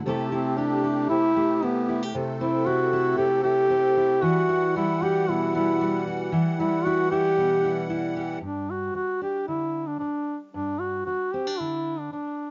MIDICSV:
0, 0, Header, 1, 5, 480
1, 0, Start_track
1, 0, Key_signature, 1, "major"
1, 0, Tempo, 523104
1, 43, Time_signature, 4, 2, 24, 8
1, 6283, Tempo, 529568
1, 11413, End_track
2, 0, Start_track
2, 0, Title_t, "Duduk"
2, 0, Program_c, 0, 69
2, 286, Note_on_c, 0, 60, 74
2, 527, Note_on_c, 0, 62, 84
2, 540, Note_off_c, 0, 60, 0
2, 999, Note_off_c, 0, 62, 0
2, 1004, Note_on_c, 0, 64, 103
2, 1502, Note_on_c, 0, 59, 85
2, 1516, Note_off_c, 0, 64, 0
2, 1852, Note_off_c, 0, 59, 0
2, 2209, Note_on_c, 0, 64, 87
2, 2443, Note_on_c, 0, 66, 105
2, 2457, Note_off_c, 0, 64, 0
2, 2909, Note_off_c, 0, 66, 0
2, 2914, Note_on_c, 0, 67, 98
2, 3141, Note_off_c, 0, 67, 0
2, 3150, Note_on_c, 0, 67, 107
2, 3876, Note_on_c, 0, 66, 97
2, 3890, Note_off_c, 0, 67, 0
2, 4358, Note_off_c, 0, 66, 0
2, 4375, Note_on_c, 0, 64, 97
2, 4620, Note_on_c, 0, 67, 95
2, 4634, Note_off_c, 0, 64, 0
2, 4868, Note_on_c, 0, 64, 84
2, 4882, Note_off_c, 0, 67, 0
2, 5094, Note_off_c, 0, 64, 0
2, 5100, Note_on_c, 0, 64, 76
2, 5538, Note_off_c, 0, 64, 0
2, 6047, Note_on_c, 0, 64, 85
2, 6283, Note_on_c, 0, 66, 95
2, 6297, Note_off_c, 0, 64, 0
2, 6515, Note_off_c, 0, 66, 0
2, 6520, Note_on_c, 0, 67, 99
2, 7199, Note_off_c, 0, 67, 0
2, 7725, Note_on_c, 0, 62, 63
2, 7966, Note_on_c, 0, 66, 63
2, 7979, Note_off_c, 0, 62, 0
2, 8186, Note_off_c, 0, 66, 0
2, 8191, Note_on_c, 0, 66, 68
2, 8415, Note_off_c, 0, 66, 0
2, 8442, Note_on_c, 0, 67, 66
2, 8661, Note_off_c, 0, 67, 0
2, 8670, Note_on_c, 0, 64, 67
2, 9023, Note_on_c, 0, 62, 57
2, 9037, Note_off_c, 0, 64, 0
2, 9128, Note_off_c, 0, 62, 0
2, 9133, Note_on_c, 0, 62, 64
2, 9478, Note_off_c, 0, 62, 0
2, 9607, Note_on_c, 0, 62, 64
2, 9862, Note_on_c, 0, 66, 65
2, 9876, Note_off_c, 0, 62, 0
2, 10091, Note_off_c, 0, 66, 0
2, 10097, Note_on_c, 0, 66, 69
2, 10340, Note_on_c, 0, 67, 69
2, 10353, Note_off_c, 0, 66, 0
2, 10588, Note_on_c, 0, 64, 62
2, 10602, Note_off_c, 0, 67, 0
2, 10944, Note_on_c, 0, 62, 60
2, 10957, Note_off_c, 0, 64, 0
2, 11056, Note_off_c, 0, 62, 0
2, 11062, Note_on_c, 0, 62, 64
2, 11407, Note_off_c, 0, 62, 0
2, 11413, End_track
3, 0, Start_track
3, 0, Title_t, "Steel-string acoustic guitar"
3, 0, Program_c, 1, 25
3, 53, Note_on_c, 1, 48, 79
3, 58, Note_on_c, 1, 57, 66
3, 68, Note_on_c, 1, 64, 63
3, 70, Note_on_c, 1, 67, 63
3, 81, Note_on_c, 1, 69, 75
3, 290, Note_off_c, 1, 64, 0
3, 294, Note_on_c, 1, 64, 60
3, 529, Note_off_c, 1, 67, 0
3, 533, Note_on_c, 1, 67, 60
3, 766, Note_off_c, 1, 69, 0
3, 770, Note_on_c, 1, 69, 63
3, 1012, Note_off_c, 1, 48, 0
3, 1016, Note_on_c, 1, 48, 63
3, 1240, Note_off_c, 1, 57, 0
3, 1251, Note_on_c, 1, 57, 52
3, 1488, Note_off_c, 1, 64, 0
3, 1492, Note_on_c, 1, 64, 56
3, 1727, Note_off_c, 1, 67, 0
3, 1731, Note_off_c, 1, 64, 0
3, 1731, Note_on_c, 1, 64, 57
3, 1859, Note_off_c, 1, 64, 0
3, 1859, Note_on_c, 1, 67, 54
3, 1938, Note_off_c, 1, 57, 0
3, 1940, Note_off_c, 1, 48, 0
3, 1969, Note_on_c, 1, 48, 77
3, 1970, Note_off_c, 1, 67, 0
3, 2212, Note_on_c, 1, 60, 59
3, 2445, Note_on_c, 1, 64, 62
3, 2685, Note_off_c, 1, 64, 0
3, 2688, Note_on_c, 1, 64, 67
3, 2912, Note_off_c, 1, 48, 0
3, 2923, Note_on_c, 1, 48, 61
3, 3150, Note_off_c, 1, 64, 0
3, 3153, Note_on_c, 1, 64, 59
3, 3384, Note_off_c, 1, 60, 0
3, 3395, Note_on_c, 1, 60, 58
3, 3639, Note_off_c, 1, 64, 0
3, 3643, Note_on_c, 1, 64, 62
3, 3853, Note_off_c, 1, 48, 0
3, 3875, Note_on_c, 1, 52, 90
3, 3877, Note_off_c, 1, 60, 0
3, 3884, Note_off_c, 1, 69, 0
3, 4120, Note_off_c, 1, 64, 0
3, 4120, Note_on_c, 1, 64, 61
3, 4368, Note_on_c, 1, 55, 65
3, 4608, Note_on_c, 1, 66, 61
3, 4848, Note_on_c, 1, 47, 72
3, 5088, Note_off_c, 1, 55, 0
3, 5092, Note_on_c, 1, 55, 63
3, 5328, Note_off_c, 1, 55, 0
3, 5332, Note_on_c, 1, 55, 64
3, 5562, Note_off_c, 1, 66, 0
3, 5573, Note_on_c, 1, 66, 63
3, 5769, Note_off_c, 1, 52, 0
3, 5772, Note_off_c, 1, 64, 0
3, 5776, Note_off_c, 1, 47, 0
3, 5778, Note_off_c, 1, 66, 0
3, 5801, Note_on_c, 1, 52, 82
3, 6043, Note_off_c, 1, 55, 0
3, 6054, Note_on_c, 1, 55, 58
3, 6297, Note_on_c, 1, 64, 62
3, 6519, Note_off_c, 1, 64, 0
3, 6530, Note_on_c, 1, 64, 65
3, 6761, Note_on_c, 1, 47, 61
3, 6992, Note_off_c, 1, 64, 0
3, 7003, Note_on_c, 1, 64, 55
3, 7225, Note_off_c, 1, 64, 0
3, 7236, Note_on_c, 1, 64, 54
3, 7478, Note_on_c, 1, 67, 54
3, 7685, Note_off_c, 1, 52, 0
3, 7685, Note_off_c, 1, 64, 0
3, 7686, Note_off_c, 1, 47, 0
3, 7687, Note_off_c, 1, 67, 0
3, 7699, Note_on_c, 1, 43, 54
3, 8179, Note_off_c, 1, 43, 0
3, 8429, Note_on_c, 1, 62, 42
3, 8669, Note_on_c, 1, 50, 44
3, 9142, Note_off_c, 1, 50, 0
3, 9632, Note_on_c, 1, 43, 53
3, 9640, Note_off_c, 1, 55, 0
3, 10096, Note_off_c, 1, 43, 0
3, 10349, Note_off_c, 1, 62, 0
3, 10353, Note_on_c, 1, 60, 42
3, 10471, Note_off_c, 1, 60, 0
3, 10471, Note_on_c, 1, 62, 40
3, 10593, Note_on_c, 1, 50, 41
3, 11063, Note_off_c, 1, 50, 0
3, 11413, Note_off_c, 1, 62, 0
3, 11413, End_track
4, 0, Start_track
4, 0, Title_t, "Accordion"
4, 0, Program_c, 2, 21
4, 37, Note_on_c, 2, 48, 84
4, 43, Note_on_c, 2, 67, 75
4, 45, Note_on_c, 2, 57, 70
4, 1942, Note_off_c, 2, 67, 0
4, 1972, Note_on_c, 2, 69, 87
4, 3841, Note_off_c, 2, 48, 0
4, 3845, Note_off_c, 2, 57, 0
4, 3866, Note_off_c, 2, 69, 0
4, 3884, Note_on_c, 2, 55, 73
4, 3887, Note_on_c, 2, 52, 85
4, 3888, Note_on_c, 2, 78, 91
4, 7679, Note_off_c, 2, 55, 0
4, 7680, Note_off_c, 2, 52, 0
4, 7681, Note_off_c, 2, 78, 0
4, 11413, End_track
5, 0, Start_track
5, 0, Title_t, "Muted steel-string acoustic guitar strokes"
5, 8183, Note_on_c, 9, 29, 45
5, 8274, Note_off_c, 9, 29, 0
5, 9147, Note_on_c, 9, 29, 47
5, 9238, Note_off_c, 9, 29, 0
5, 10105, Note_on_c, 9, 29, 51
5, 10196, Note_off_c, 9, 29, 0
5, 11070, Note_on_c, 9, 29, 49
5, 11161, Note_off_c, 9, 29, 0
5, 11413, End_track
0, 0, End_of_file